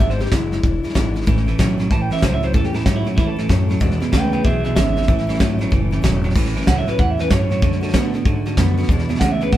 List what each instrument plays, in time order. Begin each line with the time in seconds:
0.00 upright bass G#1, steel-string acoustic guitar E2 B2 E3 G#3 D4 E4
0.10 clean electric guitar C5, snare
0.19 steel-string acoustic guitar E3 G#3 D4 E4, clean electric guitar G4, snare
0.26 snare
0.31 upright bass F#1, steel-string acoustic guitar E2 B2 E3 G#3 D4 E4, clean electric guitar E4, kick, snare, hi-hat pedal
0.51 steel-string acoustic guitar E3 G#3 D4 E4, snare
0.63 upright bass E1, steel-string acoustic guitar E3 G#3 D4 E4, kick, snare
0.83 steel-string acoustic guitar E3 G#3 D4 E4, muted upright bass stroke, snare
0.90 snare
0.94 upright bass G#1, steel-string acoustic guitar E2 B2 E3 G#3 D4 E4, kick, snare, hi-hat pedal
1.14 steel-string acoustic guitar E3 G#3 D4 E4, snare
1.22 snare
1.26 upright bass A1, steel-string acoustic guitar A2 E3 A3 C#4 E4, clean electric guitar A2 E3, kick, snare
1.37 snare
1.47 clean electric guitar A2 E3, steel-string acoustic guitar A3 C#4 E4, snare
1.58 upright bass B1, steel-string acoustic guitar A2 E3 A3 C#4 E4, clean electric guitar A2 F#3, kick, snare, hi-hat pedal
1.78 clean electric guitar A2 F#3, steel-string acoustic guitar A3 C#4 E4, snare
1.90 upright bass A1, clean electric guitar A2 E3 A5, steel-string acoustic guitar E3 A3 C#4 E4, kick, snare
2.02 clean electric guitar G5
2.10 clean electric guitar A2 E3 E5, steel-string acoustic guitar A3 C#4 E4, snare
2.17 snare
2.21 upright bass C#2, steel-string acoustic guitar A2 E3 A3 C#4 E4, clean electric guitar A2 F#3 C5, kick, snare, hi-hat pedal
2.34 clean electric guitar E5
2.41 clean electric guitar A2 F#3 C5, steel-string acoustic guitar A3 C#4 E4, snare
2.53 upright bass E2, steel-string acoustic guitar A2 E3 A3 C#4 E4, clean electric guitar A2 E3 A4, kick, snare
2.64 clean electric guitar G4, snare
2.73 clean electric guitar A2 E3 A4, steel-string acoustic guitar A3 C#4 E4, snare
2.80 snare
2.85 upright bass G#2, clean electric guitar A2 F#3 G4, steel-string acoustic guitar A2 E3 A3 C#4 E4, kick, snare, hi-hat pedal
2.96 clean electric guitar E4
3.05 clean electric guitar A2 F#3, steel-string acoustic guitar A3 C#4 E4, snare
3.16 upright bass A2, clean electric guitar A2 E3 E4, steel-string acoustic guitar E3 A3 C#4 E4, kick, snare
3.27 clean electric guitar A4
3.36 clean electric guitar A2 E3, steel-string acoustic guitar A3 C#4 E4, snare
3.49 upright bass F#2, steel-string acoustic guitar A2 E3 A3 C#4 E4, clean electric guitar A2 F#3, kick, snare, hi-hat pedal
3.68 clean electric guitar A2 F#3, steel-string acoustic guitar A3 C#4 E4, snare
3.80 steel-string acoustic guitar E2 B2 E3 G#3 D4 E4, upright bass E2, clean electric guitar E2 B2, kick, snare
3.91 snare
4.00 clean electric guitar E2 B2, steel-string acoustic guitar E3 G#3 D4 E4, snare
4.12 upright bass D2, steel-string acoustic guitar E2 B2 E3 G#3 D4 E4, clean electric guitar E2 C#3 B4 G5, kick, snare, hi-hat pedal
4.32 clean electric guitar E2 C#3 B4 G5, steel-string acoustic guitar E3 G#3 D4 E4, snare
4.43 upright bass B1, clean electric guitar E2 B2 G#4 E5, steel-string acoustic guitar E3 G#3 D4 E4, kick, snare
4.64 clean electric guitar E2 B2 G#4 E5, steel-string acoustic guitar E3 G#3 D4 E4, snare
4.76 upright bass G#1, steel-string acoustic guitar E2 B2 E3 G#3 D4 E4, clean electric guitar E2 C#3 E5, kick, snare, hi-hat pedal
4.96 clean electric guitar E2 C#3, steel-string acoustic guitar G#3 D4 E4, snare
5.03 snare
5.08 upright bass A1, steel-string acoustic guitar A2 E3 A3 C#4 E4, clean electric guitar A2 E3, kick, snare
5.19 snare
5.27 clean electric guitar A2 E3, steel-string acoustic guitar A3 C#4 E4, snare
5.35 snare
5.39 upright bass G#1, steel-string acoustic guitar A2 E3 A3 C#4 E4, clean electric guitar A2 F#3, kick, snare, hi-hat pedal
5.59 clean electric guitar A2 F#3, steel-string acoustic guitar A3 C#4 E4, snare
5.70 upright bass F#1, clean electric guitar A2 E3, steel-string acoustic guitar E3 A3 C#4 E4, kick, snare
5.91 clean electric guitar A2 E3, steel-string acoustic guitar A3 C#4 E4, snare
6.02 upright bass E1, steel-string acoustic guitar A2 E3 A3 C#4 E4, clean electric guitar A2 F#3, kick, snare, hi-hat pedal
6.23 clean electric guitar A2 F#3, steel-string acoustic guitar A3 C#4 E4, snare
6.30 snare
6.35 upright bass A1, steel-string acoustic guitar A2 E3 A3 C#4 E4, clean electric guitar A2 E3, kick, snare, crash
6.46 snare
6.54 clean electric guitar A2 E3, steel-string acoustic guitar A3 C#4 E4, snare
6.62 snare
6.66 upright bass C#2, steel-string acoustic guitar A2 E3 A3 C#4 E4, clean electric guitar A2 F#3 F#5, kick, snare, hi-hat pedal
6.78 clean electric guitar E5
6.87 clean electric guitar A2 F#3 B4, steel-string acoustic guitar A3 C#4 E4, muted upright bass stroke, snare
6.98 upright bass E2, clean electric guitar A2 E3 F#5, steel-string acoustic guitar E3 A3 C#4 E4, kick, snare
7.11 clean electric guitar E5
7.18 clean electric guitar A2 E3 B4, steel-string acoustic guitar A3 C#4 E4, snare
7.30 upright bass G2, steel-string acoustic guitar A2 E3 A3 C#4 E4, clean electric guitar A2 F#3 C#5, kick, snare, hi-hat pedal
7.50 clean electric guitar A2 F#3, steel-string acoustic guitar A3 C#4 E4, snare
7.62 upright bass F#2, steel-string acoustic guitar D3 A3 D4 F#4, clean electric guitar D3 A3, kick, snare
7.73 snare
7.81 clean electric guitar D3 A3, steel-string acoustic guitar A3 D4 F#4, snare
7.88 snare
7.93 upright bass A2, steel-string acoustic guitar D3 A3 D4 F#4, clean electric guitar D3 B3, kick, snare, hi-hat pedal
8.14 clean electric guitar D3 B3, steel-string acoustic guitar A3 D4 F#4, snare
8.25 upright bass G#2, steel-string acoustic guitar D3 A3 D4 F#4, clean electric guitar D3 A3, kick, snare
8.46 clean electric guitar D3 A3, steel-string acoustic guitar A3 D4 F#4, snare
8.57 upright bass F#2, steel-string acoustic guitar D3 A3 D4 F#4, clean electric guitar D3 B3, kick, snare, hi-hat pedal
8.77 clean electric guitar D3 B3, steel-string acoustic guitar A3 D4 F#4, snare
8.83 snare
8.89 upright bass E2, clean electric guitar E2 B2, steel-string acoustic guitar E2 B2 E3 G#3 D4 E4, kick, snare
8.99 snare
9.09 clean electric guitar E2 B2, steel-string acoustic guitar E3 G#3 D4 E4, snare
9.15 snare
9.20 upright bass D2, steel-string acoustic guitar E2 B2 E3 G#3 D4 E4, clean electric guitar E2 C#3 F#5, kick, snare, hi-hat pedal
9.31 clean electric guitar E5
9.41 clean electric guitar E2 C#3 B4, steel-string acoustic guitar E3 G#3 D4 E4, snare
9.52 upright bass B1, clean electric guitar E2 B2 F#5, steel-string acoustic guitar E3 G#3, kick, snare